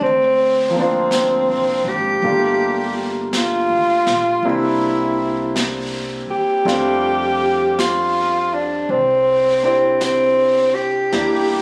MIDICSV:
0, 0, Header, 1, 6, 480
1, 0, Start_track
1, 0, Key_signature, -1, "major"
1, 0, Tempo, 1111111
1, 962, Time_signature, 4, 2, 24, 8
1, 5019, End_track
2, 0, Start_track
2, 0, Title_t, "Tenor saxophone"
2, 0, Program_c, 0, 66
2, 13, Note_on_c, 0, 60, 83
2, 324, Note_off_c, 0, 60, 0
2, 338, Note_on_c, 0, 60, 72
2, 813, Note_on_c, 0, 67, 76
2, 820, Note_off_c, 0, 60, 0
2, 1369, Note_off_c, 0, 67, 0
2, 1455, Note_on_c, 0, 65, 72
2, 1934, Note_on_c, 0, 64, 70
2, 1940, Note_off_c, 0, 65, 0
2, 2408, Note_off_c, 0, 64, 0
2, 2724, Note_on_c, 0, 67, 95
2, 3366, Note_on_c, 0, 65, 79
2, 3373, Note_off_c, 0, 67, 0
2, 3688, Note_on_c, 0, 62, 67
2, 3695, Note_off_c, 0, 65, 0
2, 3847, Note_on_c, 0, 60, 75
2, 3854, Note_off_c, 0, 62, 0
2, 4162, Note_off_c, 0, 60, 0
2, 4167, Note_on_c, 0, 60, 70
2, 4316, Note_off_c, 0, 60, 0
2, 4337, Note_on_c, 0, 60, 76
2, 4643, Note_on_c, 0, 67, 79
2, 4649, Note_off_c, 0, 60, 0
2, 5019, Note_off_c, 0, 67, 0
2, 5019, End_track
3, 0, Start_track
3, 0, Title_t, "Grand piano"
3, 0, Program_c, 1, 0
3, 0, Control_c, 1, 64, 127
3, 12, Control_c, 1, 64, 0
3, 84, Control_c, 1, 64, 127
3, 301, Note_on_c, 1, 53, 47
3, 314, Note_on_c, 1, 58, 45
3, 326, Note_on_c, 1, 60, 42
3, 338, Note_on_c, 1, 62, 45
3, 352, Note_on_c, 1, 65, 50
3, 953, Note_off_c, 1, 53, 0
3, 959, Note_off_c, 1, 58, 0
3, 962, Note_off_c, 1, 62, 0
3, 965, Note_off_c, 1, 60, 0
3, 965, Note_off_c, 1, 65, 0
3, 966, Note_on_c, 1, 55, 43
3, 967, Note_on_c, 1, 57, 37
3, 967, Note_on_c, 1, 58, 42
3, 968, Control_c, 1, 64, 0
3, 969, Note_on_c, 1, 62, 40
3, 971, Note_on_c, 1, 65, 47
3, 1040, Control_c, 1, 64, 127
3, 1916, Note_off_c, 1, 55, 0
3, 1916, Note_off_c, 1, 58, 0
3, 1919, Note_off_c, 1, 62, 0
3, 1922, Note_on_c, 1, 55, 48
3, 1922, Note_on_c, 1, 58, 40
3, 1923, Note_off_c, 1, 57, 0
3, 1923, Note_on_c, 1, 60, 45
3, 1925, Note_off_c, 1, 65, 0
3, 1925, Note_on_c, 1, 62, 44
3, 1925, Note_on_c, 1, 64, 54
3, 1927, Control_c, 1, 64, 0
3, 1996, Control_c, 1, 64, 127
3, 2870, Note_off_c, 1, 55, 0
3, 2871, Note_off_c, 1, 60, 0
3, 2874, Note_off_c, 1, 62, 0
3, 2876, Note_on_c, 1, 57, 40
3, 2877, Note_on_c, 1, 55, 50
3, 2878, Note_on_c, 1, 60, 46
3, 2881, Note_on_c, 1, 62, 45
3, 2883, Note_on_c, 1, 65, 54
3, 2884, Note_off_c, 1, 58, 0
3, 2885, Note_off_c, 1, 64, 0
3, 2888, Control_c, 1, 64, 0
3, 2955, Control_c, 1, 64, 127
3, 4153, Note_off_c, 1, 60, 0
3, 4155, Note_off_c, 1, 62, 0
3, 4160, Note_on_c, 1, 60, 35
3, 4162, Note_on_c, 1, 62, 34
3, 4168, Note_on_c, 1, 64, 36
3, 4171, Note_on_c, 1, 67, 42
3, 4800, Note_off_c, 1, 62, 0
3, 4800, Note_off_c, 1, 64, 0
3, 4801, Note_off_c, 1, 55, 0
3, 4801, Note_off_c, 1, 57, 0
3, 4803, Note_off_c, 1, 67, 0
3, 4804, Note_off_c, 1, 60, 0
3, 4804, Note_off_c, 1, 65, 0
3, 4806, Note_on_c, 1, 58, 38
3, 4806, Note_on_c, 1, 64, 36
3, 4807, Note_on_c, 1, 55, 39
3, 4807, Note_on_c, 1, 62, 37
3, 4809, Control_c, 1, 64, 0
3, 4809, Note_on_c, 1, 67, 45
3, 4885, Control_c, 1, 64, 127
3, 5019, Note_off_c, 1, 55, 0
3, 5019, Note_off_c, 1, 58, 0
3, 5019, Note_off_c, 1, 62, 0
3, 5019, Note_off_c, 1, 64, 0
3, 5019, Note_off_c, 1, 67, 0
3, 5019, End_track
4, 0, Start_track
4, 0, Title_t, "Upright bass"
4, 0, Program_c, 2, 32
4, 4, Note_on_c, 2, 38, 73
4, 625, Note_off_c, 2, 38, 0
4, 643, Note_on_c, 2, 36, 49
4, 792, Note_off_c, 2, 36, 0
4, 796, Note_on_c, 2, 32, 61
4, 948, Note_off_c, 2, 32, 0
4, 960, Note_on_c, 2, 31, 77
4, 1583, Note_off_c, 2, 31, 0
4, 1597, Note_on_c, 2, 38, 52
4, 1747, Note_off_c, 2, 38, 0
4, 1756, Note_on_c, 2, 34, 52
4, 1907, Note_off_c, 2, 34, 0
4, 1912, Note_on_c, 2, 36, 74
4, 2698, Note_off_c, 2, 36, 0
4, 2874, Note_on_c, 2, 41, 72
4, 3822, Note_off_c, 2, 41, 0
4, 3841, Note_on_c, 2, 36, 72
4, 4786, Note_off_c, 2, 36, 0
4, 4806, Note_on_c, 2, 40, 72
4, 5019, Note_off_c, 2, 40, 0
4, 5019, End_track
5, 0, Start_track
5, 0, Title_t, "Muted upright bass strokes"
5, 2711, Note_on_c, 9, 29, 30
5, 2754, Note_off_c, 9, 29, 0
5, 5019, End_track
6, 0, Start_track
6, 0, Title_t, "Drums"
6, 2, Note_on_c, 9, 25, 33
6, 479, Note_off_c, 9, 25, 0
6, 479, Note_on_c, 9, 25, 31
6, 479, Note_on_c, 9, 38, 40
6, 479, Note_on_c, 9, 44, 46
6, 522, Note_off_c, 9, 38, 0
6, 522, Note_off_c, 9, 44, 0
6, 955, Note_off_c, 9, 25, 0
6, 955, Note_on_c, 9, 25, 32
6, 1438, Note_off_c, 9, 25, 0
6, 1438, Note_on_c, 9, 25, 31
6, 1438, Note_on_c, 9, 38, 38
6, 1438, Note_on_c, 9, 44, 42
6, 1481, Note_off_c, 9, 38, 0
6, 1481, Note_off_c, 9, 44, 0
6, 1757, Note_on_c, 9, 38, 24
6, 1800, Note_off_c, 9, 38, 0
6, 1919, Note_off_c, 9, 25, 0
6, 1919, Note_on_c, 9, 25, 31
6, 2400, Note_off_c, 9, 25, 0
6, 2400, Note_on_c, 9, 25, 34
6, 2400, Note_on_c, 9, 38, 38
6, 2400, Note_on_c, 9, 44, 46
6, 2444, Note_off_c, 9, 38, 0
6, 2444, Note_off_c, 9, 44, 0
6, 2885, Note_off_c, 9, 25, 0
6, 2885, Note_on_c, 9, 25, 32
6, 2885, Note_on_c, 9, 38, 26
6, 2928, Note_off_c, 9, 38, 0
6, 3364, Note_off_c, 9, 25, 0
6, 3364, Note_on_c, 9, 25, 37
6, 3364, Note_on_c, 9, 38, 34
6, 3364, Note_on_c, 9, 44, 44
6, 3407, Note_off_c, 9, 38, 0
6, 3407, Note_off_c, 9, 44, 0
6, 3843, Note_off_c, 9, 25, 0
6, 3843, Note_on_c, 9, 25, 31
6, 4323, Note_off_c, 9, 25, 0
6, 4323, Note_on_c, 9, 25, 40
6, 4323, Note_on_c, 9, 38, 39
6, 4323, Note_on_c, 9, 44, 53
6, 4366, Note_off_c, 9, 38, 0
6, 4366, Note_off_c, 9, 44, 0
6, 4806, Note_off_c, 9, 25, 0
6, 4806, Note_on_c, 9, 25, 40
6, 4806, Note_on_c, 9, 38, 27
6, 4849, Note_off_c, 9, 38, 0
6, 5019, Note_off_c, 9, 25, 0
6, 5019, End_track
0, 0, End_of_file